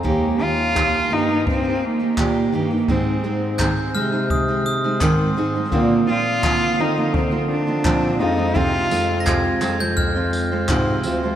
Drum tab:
TB |--------|--------|--------|-x-x-x-x|
CP |--x---x-|--x---x-|--x---x-|--xx--x-|
BD |o-o-o-o-|o-o-o-o-|o-o-o-o-|o-o-o-o-|